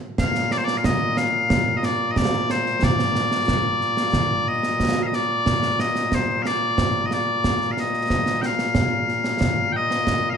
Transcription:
0.18 A#2 A#3 F5, concert bass drum, snare
0.35 snare
0.51 D5, snare
0.58 C5
0.64 D5, snare
0.77 F5
0.84 D#5, concert bass drum, snare
1.17 F5, snare
1.50 concert bass drum, snare
1.77 D#5
1.83 D5, snare
2.11 D#5
2.16 D5, concert bass drum, snare
2.33 snare
2.50 C5, snare
2.66 snare
2.83 D5, concert bass drum, snare
2.99 snare
3.15 snare
3.32 snare
3.48 concert bass drum, snare
3.81 snare
3.97 snare
4.13 concert bass drum, snare
4.48 D#5
4.63 snare
4.80 concert bass drum, snare
5.03 D#5 F5
5.13 D5, snare
5.46 concert bass drum, snare
5.63 snare
5.79 D#5, snare
5.95 snare
6.12 C5, concert bass drum, snare
6.42 F5, snare
6.47 D5
6.78 concert bass drum, snare
7.06 D#5
7.11 D5, snare
7.44 concert bass drum, snare
7.61 snare
7.72 F5
7.77 D#5, snare
7.94 snare
8.10 concert bass drum, snare
8.26 snare
8.42 G5, snare
8.46 F5
8.59 snare
8.75 concert bass drum, snare
9.08 snare
9.24 snare
9.41 concert bass drum, snare
9.73 D#5 G5
9.91 snare
10.07 concert bass drum, snare
10.30 F5
10.34 D#5

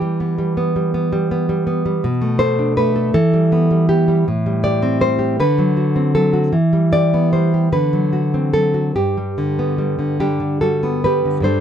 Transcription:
Already playing: E3 G4
0.02 G3
0.20 B3
0.38 G3
0.57 B3
0.76 G3
0.94 B3
1.13 G3
1.31 B3
1.49 G3
1.67 B3
1.86 G3
2.04 B2
2.22 A3
2.39 A4 C5
2.59 D4
2.77 A3 B4
2.96 A4
3.14 E3 A4
3.33 G3
3.52 B3
3.71 G3
3.89 B3 G4
4.08 G3
4.28 A2
4.46 G3
4.64 G4 D5
4.83 C4
5.01 G3 C5
5.19 G4
5.40 D3 B4
5.58 F#3
5.77 F#4
5.96 C4
6.15 F#3 A4
6.33 F#4
6.53 E3
6.73 G3
6.93 G4 D5
7.14 B3
7.33 G3 C5
7.54 G4
7.72 D3 B4
7.93 F#3
8.13 F#4
8.34 C4
8.53 F#3 A4
8.74 F#4
8.96 G2 G4
9.17 G3
9.38 D3
9.59 B3
9.78 G3
9.99 D3
10.20 G3 D4 G4
10.40 D3
10.61 G3 F#4 A4
10.83 B3
11.04 G3 G4 B4
11.25 D3
11.40 G2 G3 D4 C5
11.45 A4

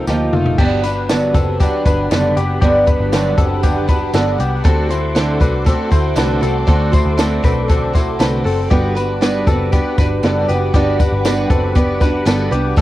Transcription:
0.07 D2 D#3 F3 A#3 D#4 G4, snare, tambourine
0.33 F1 F3 A3 A#3 D#4 F4, mid tom
0.46 floor tom
0.58 G1 G2 D3 F#3 B3 D4 G4 F#5 B5 D6, kick, crash
0.83 F#3 B3 D4 B4, closed hi-hat, tambourine
1.09 G2 D3 F#3 B3 D4, snare, closed hi-hat, tambourine
1.34 F#1 F#3 B3 C4 D4 A4, kick, closed hi-hat, tambourine
1.59 D3 F#3 B3 D4 G4, kick, closed hi-hat, tambourine
1.85 G1 F#3 B3 D4 B4, kick, closed hi-hat, tambourine
2.11 F#1 G2 D3 F#3 B3 D4 A4, snare, closed hi-hat, tambourine
2.36 F#1 F#3 B3 D4 G4, closed hi-hat, tambourine
2.61 G1 G2 D3 F#3 B3 D4 G4, kick, closed hi-hat
2.86 F#3 B3 D4 B4, kick, closed hi-hat, tambourine
3.00 G1
3.12 G2 D3 F#3 B3 D4, snare, closed hi-hat, tambourine
3.37 F#1 F#3 B3 C4 D4 A4, kick, closed hi-hat, tambourine
3.63 D3 F#3 B3 D4 G4, kick, closed hi-hat, tambourine
3.87 F#3 B3 D4 B4, kick, closed hi-hat, tambourine
4.13 G1 G2 D3 F#3 B3 D4 A4, snare, closed hi-hat, tambourine
4.38 C2 F#3 B3 D4 G4, closed hi-hat, tambourine
4.64 D2 D3 A3 C4 F#4 A4 C6, kick, closed hi-hat, tambourine
4.89 A3 C4 E4 F#4 C5, closed hi-hat, tambourine
5.15 D3 A3 C4 F#4, snare, closed hi-hat, tambourine
5.40 C2 A3 C4 D4 F#4 B4, kick, closed hi-hat, tambourine
5.64 D3 A3 C4 F#4 A4, kick, closed hi-hat, tambourine
5.91 D2 A3 C4 E4 F#4 C5, kick, closed hi-hat, tambourine
6.16 C2 D3 A3 C4 D4 F#4 B4, snare, closed hi-hat, tambourine
6.41 C2 A3 C4 F#4 A4, closed hi-hat, tambourine
6.67 D2 D3 A3 C4 F#4 A4, kick, closed hi-hat
6.92 A3 C4 E4 F#4 C5, kick, closed hi-hat, tambourine
7.06 D2
7.18 D3 A3 C4 F#4, snare, closed hi-hat, tambourine
7.43 B1 A3 C4 D4 F#4 B4, kick, closed hi-hat, tambourine
7.68 D3 A3 C4 F#4 A4, kick, closed hi-hat, tambourine
7.93 A3 C4 E4 F#4 C5, kick, snare, closed hi-hat, tambourine
8.19 C2 D3 A3 C4 D4 F#4 B4, snare, closed hi-hat, tambourine
8.44 F#1 A3 C4 F#4 A4, open hi-hat
8.70 G1 G3 B3 D4 F#4 G4 B4 F#5 B5, kick, closed hi-hat
8.95 D4 F#4 B4, closed hi-hat, tambourine
9.21 G3 B3 D4 F#4 B4, snare, closed hi-hat, tambourine
9.47 F#1 C4 D4 F#4 A4 B4, kick, closed hi-hat, tambourine
9.72 B3 D4 F#4 G4 B4, kick, closed hi-hat, tambourine
9.98 G1 D4 F#4 B4, kick, snare, closed hi-hat, tambourine
10.23 F#1 G3 B3 D4 F#4 A4 B4, snare, closed hi-hat, tambourine
10.48 F#1 B3 D4 F#4 G4 B4, closed hi-hat, tambourine
10.74 G1 G3 B3 D4 F#4 G4 B4, kick, closed hi-hat
10.99 D4 F#4 B4, kick, closed hi-hat, tambourine
11.12 G1
11.25 G3 B3 D4 F#4 B4, snare, closed hi-hat, tambourine
11.50 F#1 C4 D4 F#4 A4 B4, kick, closed hi-hat, tambourine
11.75 B3 D4 F#4 G4 B4, kick, closed hi-hat, tambourine
12.00 D4 F#4 B4, kick, snare, closed hi-hat, tambourine
12.25 G1 G3 B3 D4 F#4 A4 B4, snare, closed hi-hat, tambourine
12.51 C2 B3 D4 F#4 G4 B4, closed hi-hat
12.76 D2 D3 F#3 A3 C4 A4 C6 D6, kick, closed hi-hat, tambourine

